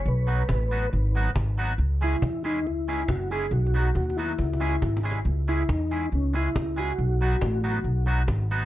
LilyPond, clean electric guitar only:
\new Staff \with { instrumentName = "Clean electric guitar" } { \time 4/4 \key cis \minor \tempo 4 = 138 r8 <fis b dis' fis'>8 r8 <fis b dis' fis'>8 r8 <fis b dis' fis'>8 r8 <fis b dis' fis'>8 | r8 <gis cis' e' gis'>8 r8 <gis cis' e' gis'>8 r8 <gis cis' e' gis'>8 r8 <gis cis' e' gis'>8 | r8 <fis b dis' fis'>8 r8 <fis b dis' fis'>8 r8 <gis cis' e' gis'>8 r8 <gis cis' e' gis'>8 | r8 <gis cis' e' gis'>8 r8 <gis cis' e' gis'>8 r8 <gis cis' e' gis'>8 r8 <gis cis' e' gis'>8 |
r8 <fis b dis' fis'>8 r8 <fis b dis' fis'>8 r8 <fis b dis' fis'>8 r8 <fis b dis' fis'>8 | }